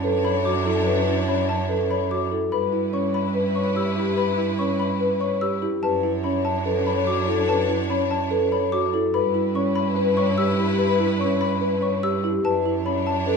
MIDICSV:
0, 0, Header, 1, 6, 480
1, 0, Start_track
1, 0, Tempo, 413793
1, 1006, Time_signature, 4, 2, 24, 8
1, 15508, End_track
2, 0, Start_track
2, 0, Title_t, "Xylophone"
2, 0, Program_c, 0, 13
2, 0, Note_on_c, 0, 81, 82
2, 117, Note_off_c, 0, 81, 0
2, 286, Note_on_c, 0, 83, 72
2, 525, Note_on_c, 0, 86, 79
2, 598, Note_off_c, 0, 83, 0
2, 837, Note_off_c, 0, 86, 0
2, 1488, Note_on_c, 0, 83, 62
2, 1727, Note_on_c, 0, 81, 83
2, 1798, Note_off_c, 0, 83, 0
2, 2038, Note_off_c, 0, 81, 0
2, 2210, Note_on_c, 0, 83, 69
2, 2449, Note_on_c, 0, 86, 72
2, 2519, Note_off_c, 0, 83, 0
2, 2759, Note_off_c, 0, 86, 0
2, 2925, Note_on_c, 0, 83, 87
2, 3237, Note_off_c, 0, 83, 0
2, 3405, Note_on_c, 0, 85, 62
2, 3646, Note_on_c, 0, 83, 70
2, 3717, Note_off_c, 0, 85, 0
2, 3958, Note_off_c, 0, 83, 0
2, 4123, Note_on_c, 0, 85, 62
2, 4365, Note_on_c, 0, 88, 71
2, 4437, Note_off_c, 0, 85, 0
2, 4677, Note_off_c, 0, 88, 0
2, 4844, Note_on_c, 0, 83, 80
2, 5157, Note_off_c, 0, 83, 0
2, 5321, Note_on_c, 0, 85, 69
2, 5563, Note_on_c, 0, 83, 79
2, 5636, Note_off_c, 0, 85, 0
2, 5876, Note_off_c, 0, 83, 0
2, 6040, Note_on_c, 0, 85, 62
2, 6280, Note_on_c, 0, 88, 85
2, 6356, Note_off_c, 0, 85, 0
2, 6596, Note_off_c, 0, 88, 0
2, 6760, Note_on_c, 0, 81, 90
2, 7076, Note_off_c, 0, 81, 0
2, 7238, Note_on_c, 0, 83, 63
2, 7479, Note_on_c, 0, 81, 85
2, 7555, Note_off_c, 0, 83, 0
2, 7795, Note_off_c, 0, 81, 0
2, 7964, Note_on_c, 0, 83, 70
2, 8203, Note_on_c, 0, 86, 85
2, 8277, Note_off_c, 0, 83, 0
2, 8517, Note_off_c, 0, 86, 0
2, 8685, Note_on_c, 0, 81, 80
2, 8997, Note_off_c, 0, 81, 0
2, 9164, Note_on_c, 0, 83, 72
2, 9404, Note_on_c, 0, 81, 86
2, 9477, Note_off_c, 0, 83, 0
2, 9717, Note_off_c, 0, 81, 0
2, 9884, Note_on_c, 0, 83, 73
2, 10119, Note_on_c, 0, 86, 90
2, 10197, Note_off_c, 0, 83, 0
2, 10435, Note_off_c, 0, 86, 0
2, 10603, Note_on_c, 0, 83, 87
2, 10916, Note_off_c, 0, 83, 0
2, 11082, Note_on_c, 0, 85, 73
2, 11316, Note_on_c, 0, 83, 90
2, 11396, Note_off_c, 0, 85, 0
2, 11634, Note_off_c, 0, 83, 0
2, 11797, Note_on_c, 0, 85, 77
2, 12037, Note_on_c, 0, 88, 97
2, 12115, Note_off_c, 0, 85, 0
2, 12354, Note_off_c, 0, 88, 0
2, 12514, Note_on_c, 0, 83, 87
2, 12833, Note_off_c, 0, 83, 0
2, 12999, Note_on_c, 0, 85, 72
2, 13235, Note_on_c, 0, 83, 88
2, 13315, Note_off_c, 0, 85, 0
2, 13554, Note_off_c, 0, 83, 0
2, 13715, Note_on_c, 0, 85, 68
2, 13958, Note_on_c, 0, 88, 92
2, 14034, Note_off_c, 0, 85, 0
2, 14275, Note_off_c, 0, 88, 0
2, 14440, Note_on_c, 0, 81, 93
2, 14755, Note_off_c, 0, 81, 0
2, 14916, Note_on_c, 0, 83, 73
2, 15157, Note_on_c, 0, 81, 86
2, 15234, Note_off_c, 0, 83, 0
2, 15475, Note_off_c, 0, 81, 0
2, 15508, End_track
3, 0, Start_track
3, 0, Title_t, "Vibraphone"
3, 0, Program_c, 1, 11
3, 37, Note_on_c, 1, 71, 78
3, 281, Note_on_c, 1, 73, 75
3, 354, Note_off_c, 1, 71, 0
3, 596, Note_off_c, 1, 73, 0
3, 755, Note_on_c, 1, 69, 64
3, 997, Note_on_c, 1, 71, 81
3, 1074, Note_off_c, 1, 69, 0
3, 1315, Note_off_c, 1, 71, 0
3, 1462, Note_on_c, 1, 73, 69
3, 1789, Note_off_c, 1, 73, 0
3, 1954, Note_on_c, 1, 71, 67
3, 2204, Note_on_c, 1, 73, 66
3, 2273, Note_off_c, 1, 71, 0
3, 2517, Note_off_c, 1, 73, 0
3, 2689, Note_on_c, 1, 69, 62
3, 2930, Note_on_c, 1, 71, 78
3, 2999, Note_off_c, 1, 69, 0
3, 3239, Note_off_c, 1, 71, 0
3, 3397, Note_on_c, 1, 73, 73
3, 3714, Note_off_c, 1, 73, 0
3, 3875, Note_on_c, 1, 71, 70
3, 4119, Note_on_c, 1, 73, 63
3, 4194, Note_off_c, 1, 71, 0
3, 4435, Note_off_c, 1, 73, 0
3, 4593, Note_on_c, 1, 67, 67
3, 4829, Note_on_c, 1, 71, 81
3, 4913, Note_off_c, 1, 67, 0
3, 5152, Note_off_c, 1, 71, 0
3, 5323, Note_on_c, 1, 73, 68
3, 5637, Note_off_c, 1, 73, 0
3, 5793, Note_on_c, 1, 71, 72
3, 6034, Note_on_c, 1, 73, 74
3, 6113, Note_off_c, 1, 71, 0
3, 6353, Note_off_c, 1, 73, 0
3, 6522, Note_on_c, 1, 67, 70
3, 6767, Note_on_c, 1, 71, 87
3, 6836, Note_off_c, 1, 67, 0
3, 7078, Note_off_c, 1, 71, 0
3, 7244, Note_on_c, 1, 73, 69
3, 7557, Note_off_c, 1, 73, 0
3, 7719, Note_on_c, 1, 71, 73
3, 7961, Note_on_c, 1, 73, 68
3, 8035, Note_off_c, 1, 71, 0
3, 8276, Note_off_c, 1, 73, 0
3, 8437, Note_on_c, 1, 69, 77
3, 8678, Note_on_c, 1, 71, 87
3, 8755, Note_off_c, 1, 69, 0
3, 8995, Note_off_c, 1, 71, 0
3, 9159, Note_on_c, 1, 73, 77
3, 9475, Note_off_c, 1, 73, 0
3, 9638, Note_on_c, 1, 71, 76
3, 9885, Note_on_c, 1, 73, 75
3, 9955, Note_off_c, 1, 71, 0
3, 10197, Note_off_c, 1, 73, 0
3, 10363, Note_on_c, 1, 69, 74
3, 10605, Note_on_c, 1, 71, 94
3, 10677, Note_off_c, 1, 69, 0
3, 10917, Note_off_c, 1, 71, 0
3, 11090, Note_on_c, 1, 73, 77
3, 11399, Note_off_c, 1, 73, 0
3, 11553, Note_on_c, 1, 71, 85
3, 11808, Note_on_c, 1, 73, 77
3, 11873, Note_off_c, 1, 71, 0
3, 12118, Note_off_c, 1, 73, 0
3, 12282, Note_on_c, 1, 67, 77
3, 12506, Note_on_c, 1, 71, 90
3, 12596, Note_off_c, 1, 67, 0
3, 12831, Note_off_c, 1, 71, 0
3, 12986, Note_on_c, 1, 73, 77
3, 13311, Note_off_c, 1, 73, 0
3, 13467, Note_on_c, 1, 71, 78
3, 13698, Note_on_c, 1, 73, 78
3, 13791, Note_off_c, 1, 71, 0
3, 14028, Note_off_c, 1, 73, 0
3, 14189, Note_on_c, 1, 67, 76
3, 14433, Note_on_c, 1, 71, 88
3, 14512, Note_off_c, 1, 67, 0
3, 14753, Note_off_c, 1, 71, 0
3, 14906, Note_on_c, 1, 73, 74
3, 15231, Note_off_c, 1, 73, 0
3, 15384, Note_on_c, 1, 71, 77
3, 15508, Note_off_c, 1, 71, 0
3, 15508, End_track
4, 0, Start_track
4, 0, Title_t, "String section"
4, 0, Program_c, 2, 48
4, 0, Note_on_c, 2, 62, 88
4, 0, Note_on_c, 2, 73, 82
4, 2634, Note_off_c, 2, 62, 0
4, 2636, Note_off_c, 2, 73, 0
4, 2926, Note_on_c, 2, 64, 81
4, 2927, Note_on_c, 2, 71, 80
4, 6479, Note_off_c, 2, 64, 0
4, 6480, Note_off_c, 2, 71, 0
4, 6768, Note_on_c, 2, 62, 82
4, 6768, Note_on_c, 2, 73, 82
4, 10320, Note_off_c, 2, 62, 0
4, 10321, Note_off_c, 2, 73, 0
4, 10595, Note_on_c, 2, 71, 96
4, 10598, Note_on_c, 2, 64, 88
4, 14154, Note_off_c, 2, 71, 0
4, 14155, Note_off_c, 2, 64, 0
4, 14427, Note_on_c, 2, 62, 93
4, 14429, Note_on_c, 2, 73, 86
4, 15508, Note_off_c, 2, 62, 0
4, 15508, Note_off_c, 2, 73, 0
4, 15508, End_track
5, 0, Start_track
5, 0, Title_t, "Marimba"
5, 0, Program_c, 3, 12
5, 48, Note_on_c, 3, 69, 84
5, 358, Note_off_c, 3, 69, 0
5, 526, Note_on_c, 3, 66, 64
5, 769, Note_on_c, 3, 64, 84
5, 838, Note_off_c, 3, 66, 0
5, 1079, Note_off_c, 3, 64, 0
5, 1246, Note_on_c, 3, 64, 81
5, 1488, Note_on_c, 3, 61, 62
5, 1558, Note_off_c, 3, 64, 0
5, 1798, Note_off_c, 3, 61, 0
5, 1963, Note_on_c, 3, 69, 77
5, 2277, Note_off_c, 3, 69, 0
5, 2444, Note_on_c, 3, 66, 62
5, 2685, Note_on_c, 3, 64, 73
5, 2757, Note_off_c, 3, 66, 0
5, 2997, Note_off_c, 3, 64, 0
5, 3160, Note_on_c, 3, 64, 85
5, 3400, Note_on_c, 3, 61, 64
5, 3475, Note_off_c, 3, 64, 0
5, 3716, Note_off_c, 3, 61, 0
5, 3886, Note_on_c, 3, 71, 76
5, 4198, Note_off_c, 3, 71, 0
5, 4362, Note_on_c, 3, 67, 65
5, 4597, Note_on_c, 3, 64, 82
5, 4676, Note_off_c, 3, 67, 0
5, 4915, Note_off_c, 3, 64, 0
5, 5081, Note_on_c, 3, 64, 82
5, 5323, Note_on_c, 3, 61, 70
5, 5396, Note_off_c, 3, 64, 0
5, 5637, Note_off_c, 3, 61, 0
5, 5803, Note_on_c, 3, 71, 82
5, 6117, Note_off_c, 3, 71, 0
5, 6284, Note_on_c, 3, 67, 70
5, 6521, Note_on_c, 3, 64, 87
5, 6597, Note_off_c, 3, 67, 0
5, 6836, Note_off_c, 3, 64, 0
5, 6999, Note_on_c, 3, 64, 87
5, 7233, Note_on_c, 3, 61, 66
5, 7315, Note_off_c, 3, 64, 0
5, 7553, Note_off_c, 3, 61, 0
5, 7721, Note_on_c, 3, 69, 80
5, 8036, Note_off_c, 3, 69, 0
5, 8197, Note_on_c, 3, 66, 68
5, 8440, Note_on_c, 3, 64, 86
5, 8515, Note_off_c, 3, 66, 0
5, 8755, Note_off_c, 3, 64, 0
5, 8918, Note_on_c, 3, 64, 87
5, 9161, Note_on_c, 3, 61, 68
5, 9235, Note_off_c, 3, 64, 0
5, 9476, Note_off_c, 3, 61, 0
5, 9634, Note_on_c, 3, 69, 96
5, 9953, Note_off_c, 3, 69, 0
5, 10120, Note_on_c, 3, 66, 75
5, 10367, Note_on_c, 3, 64, 94
5, 10436, Note_off_c, 3, 66, 0
5, 10678, Note_off_c, 3, 64, 0
5, 10835, Note_on_c, 3, 64, 96
5, 11069, Note_on_c, 3, 61, 78
5, 11154, Note_off_c, 3, 64, 0
5, 11392, Note_off_c, 3, 61, 0
5, 11556, Note_on_c, 3, 71, 90
5, 11874, Note_off_c, 3, 71, 0
5, 12039, Note_on_c, 3, 67, 78
5, 12273, Note_on_c, 3, 64, 92
5, 12355, Note_off_c, 3, 67, 0
5, 12593, Note_off_c, 3, 64, 0
5, 12761, Note_on_c, 3, 64, 92
5, 13000, Note_on_c, 3, 61, 71
5, 13076, Note_off_c, 3, 64, 0
5, 13316, Note_off_c, 3, 61, 0
5, 13473, Note_on_c, 3, 71, 92
5, 13793, Note_off_c, 3, 71, 0
5, 13959, Note_on_c, 3, 67, 82
5, 14199, Note_on_c, 3, 64, 92
5, 14275, Note_off_c, 3, 67, 0
5, 14515, Note_off_c, 3, 64, 0
5, 14681, Note_on_c, 3, 64, 93
5, 14920, Note_on_c, 3, 61, 68
5, 14996, Note_off_c, 3, 64, 0
5, 15236, Note_off_c, 3, 61, 0
5, 15400, Note_on_c, 3, 69, 94
5, 15508, Note_off_c, 3, 69, 0
5, 15508, End_track
6, 0, Start_track
6, 0, Title_t, "Cello"
6, 0, Program_c, 4, 42
6, 0, Note_on_c, 4, 42, 82
6, 2780, Note_off_c, 4, 42, 0
6, 2918, Note_on_c, 4, 43, 68
6, 6619, Note_off_c, 4, 43, 0
6, 6756, Note_on_c, 4, 42, 76
6, 10458, Note_off_c, 4, 42, 0
6, 10604, Note_on_c, 4, 43, 78
6, 14302, Note_off_c, 4, 43, 0
6, 14437, Note_on_c, 4, 42, 72
6, 15508, Note_off_c, 4, 42, 0
6, 15508, End_track
0, 0, End_of_file